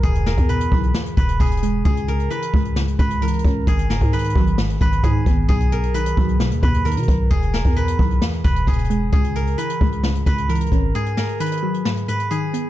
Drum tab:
HH |x-x---x-x-x---x---x-x-x-xxxxx---|x-x-x-x-x-x---x---x-x-x-xxxxx---|x-x---x-xxxx--x---x-x-x-x---x---|x-x-x-x-x-x---x---x-x-x-xxxxx---|
SD |----o-----------o---------------|----------------o---------------|----o-----------o---------------|----------------o---------------|
BD |o-----o-----o-------o---o-------|o-----------o-------o-------o---|o-----o-----o-------o---o---o---|o-----------o-------o-------o---|

HH |x-x---x-x-x---x---x-x-x-xxxxx---|x-x-x-x-x-x---x---x-x-x-xxxxx---|x-x---x-xxxx--x---x-x-x-x---x---|
SD |----o-----------o---------------|----------------o---------------|----o-----------o---------------|
BD |o-----o-----o-------o---o-------|o-----------o-------o-------o---|--------------------------------|